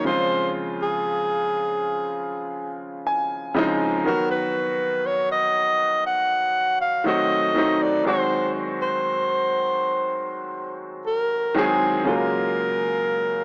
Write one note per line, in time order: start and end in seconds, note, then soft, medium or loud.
0.05 1.60 C#3 medium
0.05 1.61 F3 medium
0.05 1.61 G#3 medium
0.05 1.62 C4 medium
0.05 0.51 C5 loud
0.09 1.62 F4 medium
0.81 2.77 G#4 medium
3.07 3.53 G#5 medium
3.54 3.94 C#3 medium
3.54 3.94 F3 medium
3.54 3.95 G#3 medium
3.54 3.95 C4 medium
3.54 4.03 D#5 medium
3.58 3.96 D#4 loud
4.04 5.60 D#3 medium
4.04 5.61 F#3 medium
4.04 5.62 B3 medium
4.04 4.29 A#4 loud
4.09 5.62 F#4 medium
4.31 5.08 B4 loud
5.06 5.31 C#5 loud
5.32 6.02 D#5 loud
6.06 6.77 F#5 loud
6.81 7.08 F5 loud
7.04 7.45 D#3 medium
7.04 7.45 F#3 medium
7.04 7.46 A3 medium
7.04 7.46 C4 medium
7.04 7.84 D#5 loud
7.08 7.47 F#4 medium
7.54 7.94 D#3 medium
7.54 7.94 F#3 medium
7.54 7.95 A3 medium
7.54 7.95 C4 medium
7.58 7.96 D#4 medium
7.82 8.06 D5 medium
8.04 9.60 D#3 medium
8.04 9.61 F#3 medium
8.04 9.61 G#3 medium
8.04 9.62 C4 medium
8.04 8.51 C5 loud
8.08 9.62 F#4 medium
8.81 10.77 C5 loud
11.06 11.52 A#4 medium
11.54 11.94 D#3 medium
11.54 11.94 F#3 medium
11.54 11.95 G#3 medium
11.54 11.95 C4 medium
11.54 12.03 G#4 medium
11.54 11.96 G#4 loud
12.04 13.44 C#3 medium
12.04 13.44 F#3 medium
12.04 13.44 G#3 medium
12.04 13.44 A#3 medium
12.04 13.44 A#4 loud
12.09 13.44 F4 medium